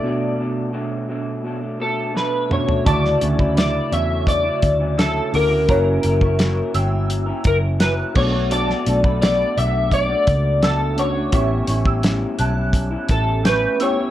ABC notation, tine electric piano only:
X:1
M:4/4
L:1/8
Q:1/4=85
K:D
V:1 name="Tine electric piano"
[B,,A,B,DF]3 z3 a [B,,A,CDFe] | [C,A,EF]3 z4 [A,CEF] | [^A,CEF]3 z4 [=A,B,DF]- | [A,B,DF]2 z4 z [A,CDF] |
[B,=C^CEG]3 z4 [B,CEG] |]